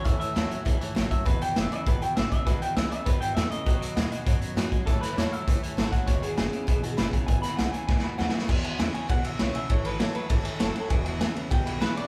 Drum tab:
CC |------------------------|------------------------|------------------------|------------------------|
RD |------------------------|------------------------|------------------------|------------------------|
HH |x--x--x--x--x--x--x--x--|x--x--x--x--x--x--x--x--|x--x--x--x--x--x--x--x--|x--x--x--x--x--x--x--x--|
SD |------o-----------o-----|------o-----------o-----|o-----o-----------o-----|------o-----------o-----|
BD |o-----------o--------o--|o-----------o--------o--|o-----------o-----------|o-----------o--------o--|

CC |------------------------|------------------------|------------------------|x-----------------------|
RD |------------------------|------------------------|------------------------|---x--x--x--x--x--x--x--|
HH |x--x--x--x--x--x--x--x--|x--x--x--x--x--x--x--x--|x--x--x--x--------------|------------------------|
SD |o--o--o-----------o--o--|o-----o-----------o-----|---o--o-----o-o---o-o-o-|------o-----------o-----|
BD |o-----------o--------o--|o-----------o--------o--|o-----------o-----------|o-----------o-----------|

CC |------------------------|------------------------|
RD |x--x--x--x--x--x--x--x--|x--x--x--x--x--x--x--x--|
HH |------------------------|------------------------|
SD |------o-----------o-----|------o-----------o-----|
BD |o-----------o-----------|o-----------o-----------|